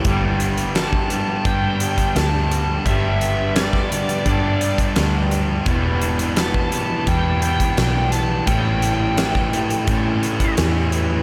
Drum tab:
HH |x-xxx-x-x-xxx-x-|x-x-x-xxx-xxx-x-|x-xxx-x-x-xxx-x-|x-x-x-xxx-xxx-x-|
SD |----o-------o---|----oo------o---|----o-------o---|----oo------o---|
BD |o----o--o--o----|o----o--o--o----|o----o--o--o----|o----o--o--o----|